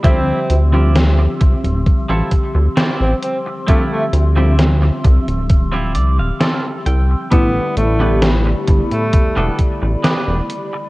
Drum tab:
HH |x-x-x-xxx-x-x-x-|x-x-x-xxx-x-x-x-|x-x-x-xxx-x-x-x-|
SD |----o-------o---|----o-------o---|----o-------o---|
BD |o-----o-o-o-----|o-----o-o-------|o-----o-o-o-----|